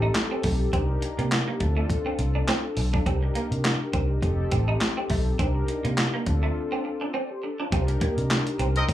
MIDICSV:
0, 0, Header, 1, 7, 480
1, 0, Start_track
1, 0, Tempo, 582524
1, 604, Time_signature, 4, 2, 24, 8
1, 7362, End_track
2, 0, Start_track
2, 0, Title_t, "Horn section"
2, 0, Program_c, 0, 61
2, 7218, Note_on_c, 0, 60, 86
2, 7218, Note_on_c, 0, 75, 103
2, 7219, Note_on_c, 0, 70, 87
2, 7286, Note_off_c, 0, 60, 0
2, 7286, Note_off_c, 0, 70, 0
2, 7286, Note_off_c, 0, 75, 0
2, 7362, End_track
3, 0, Start_track
3, 0, Title_t, "Analog polysynth"
3, 0, Program_c, 1, 90
3, 0, Note_on_c, 1, 60, 77
3, 0, Note_on_c, 1, 63, 75
3, 0, Note_on_c, 1, 67, 79
3, 0, Note_on_c, 1, 69, 97
3, 581, Note_off_c, 1, 60, 0
3, 583, Note_off_c, 1, 63, 0
3, 586, Note_off_c, 1, 67, 0
3, 588, Note_off_c, 1, 69, 0
3, 600, Note_on_c, 1, 62, 71
3, 602, Note_on_c, 1, 63, 67
3, 604, Note_on_c, 1, 67, 67
3, 606, Note_on_c, 1, 70, 75
3, 1313, Note_off_c, 1, 62, 0
3, 1318, Note_on_c, 1, 60, 78
3, 1322, Note_on_c, 1, 62, 71
3, 1323, Note_off_c, 1, 63, 0
3, 1324, Note_off_c, 1, 67, 0
3, 1325, Note_off_c, 1, 70, 0
3, 1327, Note_on_c, 1, 65, 67
3, 1331, Note_on_c, 1, 69, 86
3, 2497, Note_off_c, 1, 60, 0
3, 2499, Note_off_c, 1, 62, 0
3, 2502, Note_off_c, 1, 65, 0
3, 2504, Note_off_c, 1, 69, 0
3, 2516, Note_on_c, 1, 62, 70
3, 2521, Note_on_c, 1, 63, 64
3, 2525, Note_on_c, 1, 67, 65
3, 2529, Note_on_c, 1, 69, 64
3, 2583, Note_on_c, 1, 70, 81
3, 2587, Note_off_c, 1, 69, 0
3, 3461, Note_off_c, 1, 62, 0
3, 3463, Note_off_c, 1, 63, 0
3, 3465, Note_off_c, 1, 67, 0
3, 3475, Note_on_c, 1, 60, 83
3, 3479, Note_on_c, 1, 63, 75
3, 3483, Note_on_c, 1, 67, 79
3, 3488, Note_on_c, 1, 69, 95
3, 3495, Note_off_c, 1, 70, 0
3, 4420, Note_off_c, 1, 60, 0
3, 4422, Note_off_c, 1, 63, 0
3, 4424, Note_off_c, 1, 67, 0
3, 4427, Note_off_c, 1, 69, 0
3, 4439, Note_on_c, 1, 62, 80
3, 4441, Note_on_c, 1, 63, 66
3, 4444, Note_on_c, 1, 67, 61
3, 4446, Note_on_c, 1, 70, 82
3, 5152, Note_off_c, 1, 62, 0
3, 5157, Note_on_c, 1, 60, 78
3, 5162, Note_on_c, 1, 62, 73
3, 5163, Note_off_c, 1, 63, 0
3, 5164, Note_off_c, 1, 67, 0
3, 5165, Note_off_c, 1, 70, 0
3, 5165, Note_on_c, 1, 65, 75
3, 5170, Note_on_c, 1, 69, 89
3, 5866, Note_off_c, 1, 60, 0
3, 5868, Note_off_c, 1, 62, 0
3, 5870, Note_off_c, 1, 65, 0
3, 5872, Note_off_c, 1, 69, 0
3, 5882, Note_on_c, 1, 74, 62
3, 5887, Note_on_c, 1, 69, 55
3, 6011, Note_off_c, 1, 74, 0
3, 6013, Note_off_c, 1, 69, 0
3, 6016, Note_on_c, 1, 72, 67
3, 6023, Note_on_c, 1, 67, 65
3, 6117, Note_off_c, 1, 72, 0
3, 6121, Note_off_c, 1, 67, 0
3, 6123, Note_on_c, 1, 69, 69
3, 6128, Note_on_c, 1, 62, 64
3, 6251, Note_off_c, 1, 69, 0
3, 6254, Note_off_c, 1, 62, 0
3, 6256, Note_on_c, 1, 65, 66
3, 6262, Note_on_c, 1, 60, 59
3, 6355, Note_on_c, 1, 62, 77
3, 6359, Note_on_c, 1, 63, 64
3, 6363, Note_on_c, 1, 67, 67
3, 6368, Note_on_c, 1, 70, 85
3, 6485, Note_off_c, 1, 65, 0
3, 6488, Note_off_c, 1, 60, 0
3, 7300, Note_off_c, 1, 62, 0
3, 7302, Note_off_c, 1, 63, 0
3, 7304, Note_off_c, 1, 67, 0
3, 7307, Note_off_c, 1, 70, 0
3, 7316, Note_on_c, 1, 60, 83
3, 7321, Note_on_c, 1, 63, 77
3, 7325, Note_on_c, 1, 67, 73
3, 7329, Note_on_c, 1, 69, 88
3, 7362, Note_off_c, 1, 60, 0
3, 7362, Note_off_c, 1, 63, 0
3, 7362, Note_off_c, 1, 67, 0
3, 7362, Note_off_c, 1, 69, 0
3, 7362, End_track
4, 0, Start_track
4, 0, Title_t, "Clean electric guitar"
4, 0, Program_c, 2, 27
4, 18, Note_on_c, 2, 63, 70
4, 96, Note_off_c, 2, 63, 0
4, 258, Note_on_c, 2, 60, 67
4, 336, Note_off_c, 2, 60, 0
4, 362, Note_on_c, 2, 57, 68
4, 461, Note_off_c, 2, 57, 0
4, 602, Note_on_c, 2, 60, 87
4, 701, Note_off_c, 2, 60, 0
4, 978, Note_on_c, 2, 58, 80
4, 1056, Note_off_c, 2, 58, 0
4, 1217, Note_on_c, 2, 58, 73
4, 1295, Note_off_c, 2, 58, 0
4, 1455, Note_on_c, 2, 57, 66
4, 1534, Note_off_c, 2, 57, 0
4, 1696, Note_on_c, 2, 60, 77
4, 1774, Note_off_c, 2, 60, 0
4, 1937, Note_on_c, 2, 62, 68
4, 2015, Note_off_c, 2, 62, 0
4, 2044, Note_on_c, 2, 60, 95
4, 2143, Note_off_c, 2, 60, 0
4, 2417, Note_on_c, 2, 62, 75
4, 2495, Note_off_c, 2, 62, 0
4, 2523, Note_on_c, 2, 60, 89
4, 2622, Note_off_c, 2, 60, 0
4, 2764, Note_on_c, 2, 58, 76
4, 2862, Note_off_c, 2, 58, 0
4, 3242, Note_on_c, 2, 60, 70
4, 3341, Note_off_c, 2, 60, 0
4, 3724, Note_on_c, 2, 60, 68
4, 3823, Note_off_c, 2, 60, 0
4, 3856, Note_on_c, 2, 63, 73
4, 3934, Note_off_c, 2, 63, 0
4, 4097, Note_on_c, 2, 60, 69
4, 4175, Note_off_c, 2, 60, 0
4, 4203, Note_on_c, 2, 57, 67
4, 4302, Note_off_c, 2, 57, 0
4, 4443, Note_on_c, 2, 60, 88
4, 4542, Note_off_c, 2, 60, 0
4, 4817, Note_on_c, 2, 58, 76
4, 4895, Note_off_c, 2, 58, 0
4, 5057, Note_on_c, 2, 58, 76
4, 5135, Note_off_c, 2, 58, 0
4, 5298, Note_on_c, 2, 57, 70
4, 5375, Note_off_c, 2, 57, 0
4, 5538, Note_on_c, 2, 60, 86
4, 5615, Note_off_c, 2, 60, 0
4, 5778, Note_on_c, 2, 62, 69
4, 5856, Note_off_c, 2, 62, 0
4, 5882, Note_on_c, 2, 60, 85
4, 5982, Note_off_c, 2, 60, 0
4, 6260, Note_on_c, 2, 62, 70
4, 6337, Note_off_c, 2, 62, 0
4, 6363, Note_on_c, 2, 60, 87
4, 6462, Note_off_c, 2, 60, 0
4, 6604, Note_on_c, 2, 58, 75
4, 6703, Note_off_c, 2, 58, 0
4, 7082, Note_on_c, 2, 60, 77
4, 7182, Note_off_c, 2, 60, 0
4, 7362, End_track
5, 0, Start_track
5, 0, Title_t, "Fingered electric bass"
5, 0, Program_c, 3, 33
5, 363, Note_on_c, 3, 35, 80
5, 550, Note_off_c, 3, 35, 0
5, 603, Note_on_c, 3, 36, 93
5, 791, Note_off_c, 3, 36, 0
5, 977, Note_on_c, 3, 48, 90
5, 1165, Note_off_c, 3, 48, 0
5, 1323, Note_on_c, 3, 38, 91
5, 1511, Note_off_c, 3, 38, 0
5, 1803, Note_on_c, 3, 36, 89
5, 1990, Note_off_c, 3, 36, 0
5, 2281, Note_on_c, 3, 35, 74
5, 2470, Note_off_c, 3, 35, 0
5, 2523, Note_on_c, 3, 36, 104
5, 2711, Note_off_c, 3, 36, 0
5, 2895, Note_on_c, 3, 48, 97
5, 3084, Note_off_c, 3, 48, 0
5, 3243, Note_on_c, 3, 36, 90
5, 3431, Note_off_c, 3, 36, 0
5, 3481, Note_on_c, 3, 29, 107
5, 3669, Note_off_c, 3, 29, 0
5, 3725, Note_on_c, 3, 33, 88
5, 3912, Note_off_c, 3, 33, 0
5, 4203, Note_on_c, 3, 35, 79
5, 4390, Note_off_c, 3, 35, 0
5, 4443, Note_on_c, 3, 36, 104
5, 4631, Note_off_c, 3, 36, 0
5, 4817, Note_on_c, 3, 48, 102
5, 5005, Note_off_c, 3, 48, 0
5, 5164, Note_on_c, 3, 38, 84
5, 5351, Note_off_c, 3, 38, 0
5, 6364, Note_on_c, 3, 36, 96
5, 6551, Note_off_c, 3, 36, 0
5, 6736, Note_on_c, 3, 48, 101
5, 6924, Note_off_c, 3, 48, 0
5, 7081, Note_on_c, 3, 36, 88
5, 7269, Note_off_c, 3, 36, 0
5, 7323, Note_on_c, 3, 29, 121
5, 7362, Note_off_c, 3, 29, 0
5, 7362, End_track
6, 0, Start_track
6, 0, Title_t, "Muted clean electric guitar strokes"
6, 124, Note_on_c, 9, 29, 43
6, 206, Note_off_c, 9, 29, 0
6, 843, Note_on_c, 9, 29, 41
6, 925, Note_off_c, 9, 29, 0
6, 1322, Note_on_c, 9, 29, 43
6, 1404, Note_off_c, 9, 29, 0
6, 1805, Note_on_c, 9, 29, 45
6, 1887, Note_off_c, 9, 29, 0
6, 2283, Note_on_c, 9, 29, 45
6, 2366, Note_off_c, 9, 29, 0
6, 2659, Note_on_c, 9, 29, 45
6, 2741, Note_off_c, 9, 29, 0
6, 3483, Note_on_c, 9, 29, 41
6, 3566, Note_off_c, 9, 29, 0
6, 3962, Note_on_c, 9, 29, 44
6, 4045, Note_off_c, 9, 29, 0
6, 4685, Note_on_c, 9, 29, 40
6, 4767, Note_off_c, 9, 29, 0
6, 5162, Note_on_c, 9, 29, 42
6, 5244, Note_off_c, 9, 29, 0
6, 5644, Note_on_c, 9, 29, 40
6, 5726, Note_off_c, 9, 29, 0
6, 6126, Note_on_c, 9, 29, 43
6, 6209, Note_off_c, 9, 29, 0
6, 6499, Note_on_c, 9, 29, 45
6, 6582, Note_off_c, 9, 29, 0
6, 7322, Note_on_c, 9, 29, 41
6, 7362, Note_off_c, 9, 29, 0
6, 7362, End_track
7, 0, Start_track
7, 0, Title_t, "Drums"
7, 120, Note_on_c, 9, 42, 92
7, 125, Note_on_c, 9, 39, 93
7, 127, Note_on_c, 9, 38, 114
7, 203, Note_off_c, 9, 42, 0
7, 207, Note_off_c, 9, 39, 0
7, 209, Note_off_c, 9, 38, 0
7, 358, Note_on_c, 9, 46, 70
7, 363, Note_on_c, 9, 36, 86
7, 441, Note_off_c, 9, 46, 0
7, 446, Note_off_c, 9, 36, 0
7, 604, Note_on_c, 9, 36, 112
7, 605, Note_on_c, 9, 42, 71
7, 686, Note_off_c, 9, 36, 0
7, 687, Note_off_c, 9, 42, 0
7, 843, Note_on_c, 9, 42, 67
7, 926, Note_off_c, 9, 42, 0
7, 980, Note_on_c, 9, 42, 52
7, 1062, Note_off_c, 9, 42, 0
7, 1087, Note_on_c, 9, 39, 97
7, 1087, Note_on_c, 9, 42, 76
7, 1089, Note_on_c, 9, 38, 113
7, 1169, Note_off_c, 9, 42, 0
7, 1170, Note_off_c, 9, 39, 0
7, 1172, Note_off_c, 9, 38, 0
7, 1321, Note_on_c, 9, 42, 62
7, 1324, Note_on_c, 9, 36, 93
7, 1404, Note_off_c, 9, 42, 0
7, 1406, Note_off_c, 9, 36, 0
7, 1562, Note_on_c, 9, 36, 102
7, 1567, Note_on_c, 9, 42, 82
7, 1645, Note_off_c, 9, 36, 0
7, 1650, Note_off_c, 9, 42, 0
7, 1802, Note_on_c, 9, 42, 76
7, 1884, Note_off_c, 9, 42, 0
7, 2042, Note_on_c, 9, 42, 84
7, 2046, Note_on_c, 9, 39, 87
7, 2048, Note_on_c, 9, 38, 110
7, 2124, Note_off_c, 9, 42, 0
7, 2128, Note_off_c, 9, 39, 0
7, 2131, Note_off_c, 9, 38, 0
7, 2280, Note_on_c, 9, 46, 66
7, 2362, Note_off_c, 9, 46, 0
7, 2420, Note_on_c, 9, 36, 83
7, 2502, Note_off_c, 9, 36, 0
7, 2524, Note_on_c, 9, 36, 110
7, 2525, Note_on_c, 9, 42, 69
7, 2607, Note_off_c, 9, 36, 0
7, 2608, Note_off_c, 9, 42, 0
7, 2764, Note_on_c, 9, 42, 66
7, 2846, Note_off_c, 9, 42, 0
7, 2900, Note_on_c, 9, 42, 52
7, 2983, Note_off_c, 9, 42, 0
7, 3006, Note_on_c, 9, 39, 95
7, 3006, Note_on_c, 9, 42, 78
7, 3009, Note_on_c, 9, 38, 116
7, 3088, Note_off_c, 9, 42, 0
7, 3089, Note_off_c, 9, 39, 0
7, 3091, Note_off_c, 9, 38, 0
7, 3242, Note_on_c, 9, 42, 65
7, 3243, Note_on_c, 9, 36, 95
7, 3324, Note_off_c, 9, 42, 0
7, 3326, Note_off_c, 9, 36, 0
7, 3481, Note_on_c, 9, 36, 105
7, 3486, Note_on_c, 9, 42, 75
7, 3564, Note_off_c, 9, 36, 0
7, 3568, Note_off_c, 9, 42, 0
7, 3720, Note_on_c, 9, 42, 81
7, 3724, Note_on_c, 9, 36, 83
7, 3803, Note_off_c, 9, 42, 0
7, 3807, Note_off_c, 9, 36, 0
7, 3960, Note_on_c, 9, 42, 79
7, 3964, Note_on_c, 9, 39, 81
7, 3966, Note_on_c, 9, 38, 118
7, 4042, Note_off_c, 9, 42, 0
7, 4047, Note_off_c, 9, 39, 0
7, 4049, Note_off_c, 9, 38, 0
7, 4200, Note_on_c, 9, 46, 67
7, 4203, Note_on_c, 9, 36, 92
7, 4282, Note_off_c, 9, 46, 0
7, 4286, Note_off_c, 9, 36, 0
7, 4444, Note_on_c, 9, 36, 114
7, 4444, Note_on_c, 9, 42, 68
7, 4526, Note_off_c, 9, 36, 0
7, 4527, Note_off_c, 9, 42, 0
7, 4684, Note_on_c, 9, 42, 70
7, 4766, Note_off_c, 9, 42, 0
7, 4819, Note_on_c, 9, 42, 51
7, 4901, Note_off_c, 9, 42, 0
7, 4926, Note_on_c, 9, 42, 75
7, 4927, Note_on_c, 9, 39, 101
7, 4929, Note_on_c, 9, 38, 114
7, 5009, Note_off_c, 9, 39, 0
7, 5009, Note_off_c, 9, 42, 0
7, 5011, Note_off_c, 9, 38, 0
7, 5162, Note_on_c, 9, 42, 69
7, 5164, Note_on_c, 9, 36, 85
7, 5245, Note_off_c, 9, 42, 0
7, 5246, Note_off_c, 9, 36, 0
7, 6364, Note_on_c, 9, 36, 123
7, 6365, Note_on_c, 9, 42, 74
7, 6447, Note_off_c, 9, 36, 0
7, 6448, Note_off_c, 9, 42, 0
7, 6496, Note_on_c, 9, 42, 50
7, 6578, Note_off_c, 9, 42, 0
7, 6602, Note_on_c, 9, 42, 72
7, 6604, Note_on_c, 9, 36, 94
7, 6685, Note_off_c, 9, 42, 0
7, 6686, Note_off_c, 9, 36, 0
7, 6739, Note_on_c, 9, 42, 53
7, 6822, Note_off_c, 9, 42, 0
7, 6845, Note_on_c, 9, 42, 85
7, 6846, Note_on_c, 9, 39, 98
7, 6848, Note_on_c, 9, 38, 122
7, 6928, Note_off_c, 9, 39, 0
7, 6928, Note_off_c, 9, 42, 0
7, 6930, Note_off_c, 9, 38, 0
7, 6977, Note_on_c, 9, 42, 56
7, 7059, Note_off_c, 9, 42, 0
7, 7082, Note_on_c, 9, 42, 70
7, 7164, Note_off_c, 9, 42, 0
7, 7216, Note_on_c, 9, 42, 52
7, 7299, Note_off_c, 9, 42, 0
7, 7322, Note_on_c, 9, 36, 100
7, 7327, Note_on_c, 9, 42, 81
7, 7362, Note_off_c, 9, 36, 0
7, 7362, Note_off_c, 9, 42, 0
7, 7362, End_track
0, 0, End_of_file